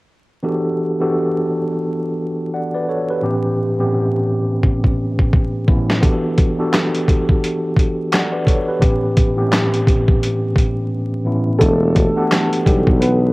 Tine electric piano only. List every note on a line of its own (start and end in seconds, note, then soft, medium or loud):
0.43 0.76 E3 medium
0.43 0.76 B3 medium
0.43 0.77 D4 medium
0.43 0.77 F#4 medium
0.43 0.77 G4 medium
0.43 0.77 A4 medium
1.00 1.83 E3 medium
1.00 1.83 B3 medium
1.00 1.83 D4 medium
1.00 1.83 F#4 medium
1.00 1.83 G4 medium
1.00 1.84 A4 medium
2.54 2.73 D5 medium
2.54 2.74 F#5 medium
2.74 2.88 B4 medium
2.74 2.88 D5 medium
2.89 3.09 A4 medium
2.89 3.09 C#5 medium
3.10 3.22 G4 medium
3.10 3.43 B4 medium
3.21 3.55 A2 medium
3.21 3.55 E3 medium
3.21 3.56 B3 medium
3.21 3.56 C#4 medium
3.21 3.56 G4 medium
3.78 4.61 A2 medium
3.78 4.62 E3 medium
3.78 4.62 B3 medium
3.78 3.85 C4 medium
3.78 4.62 G4 medium
3.86 4.65 C#4 medium
5.67 5.91 A2 medium
5.67 5.91 E3 medium
5.67 5.92 B3 medium
5.67 5.92 C#4 medium
5.67 5.92 E4 medium
6.01 6.34 E3 medium
6.01 6.35 B3 medium
6.01 6.35 D4 medium
6.01 6.35 F#4 medium
6.01 6.35 G4 medium
6.01 6.35 A4 medium
6.58 7.41 E3 medium
6.58 7.41 B3 medium
6.58 7.41 D4 medium
6.58 7.41 F#4 medium
6.58 7.42 G4 medium
6.58 7.42 A4 medium
8.12 8.31 D5 medium
8.12 8.32 F#5 medium
8.32 8.46 B4 medium
8.32 8.46 D5 medium
8.47 8.67 A4 medium
8.47 8.67 C#5 medium
8.68 8.80 G4 medium
8.68 9.01 B4 medium
8.79 9.13 A2 medium
8.79 9.13 E3 medium
8.79 9.14 B3 medium
8.79 9.14 C#4 medium
8.79 9.14 G4 medium
9.36 10.19 A2 medium
9.36 10.20 E3 medium
9.36 10.20 B3 medium
9.36 9.43 C4 medium
9.36 10.20 G4 medium
9.44 10.23 C#4 medium
11.25 11.49 A2 medium
11.25 11.50 E3 medium
11.25 11.50 B3 medium
11.25 11.50 C#4 medium
11.25 11.50 E4 medium
11.59 11.92 E3 medium
11.59 11.93 B3 medium
11.59 11.93 D4 medium
11.59 11.93 F#4 medium
11.59 11.93 G4 medium
11.59 11.94 A4 medium
12.16 12.99 E3 medium
12.16 12.99 B3 medium
12.16 12.99 D4 medium
12.16 13.00 G4 medium
12.16 13.00 A4 medium
12.16 12.99 F#5 medium